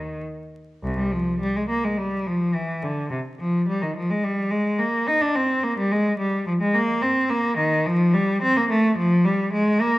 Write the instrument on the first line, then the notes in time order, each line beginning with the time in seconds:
cello
Already playing: D#3
0.84 C2
0.97 G3
1.12 F3
1.40 G3
1.56 G#3
1.69 A#3
1.84 G#3
1.97 G3
2.26 F3
2.54 E3
2.83 D3
3.11 C3
3.39 F3
3.68 G3
3.82 D#3
3.96 F3
4.10 G#3
4.24 G3
4.51 G#3
4.79 A#3
5.07 D#4
5.21 D4
5.35 C4
5.63 A#3
5.78 G3
5.92 G#3
6.18 G3
6.47 F3
6.61 G#3
6.74 A#3
7.02 C4
7.30 A#3
7.57 D#3
7.86 F3
8.14 G3
8.42 C4
8.57 A#3
8.69 A3
8.98 F3
9.24 G3
9.53 G#3
9.81 A#3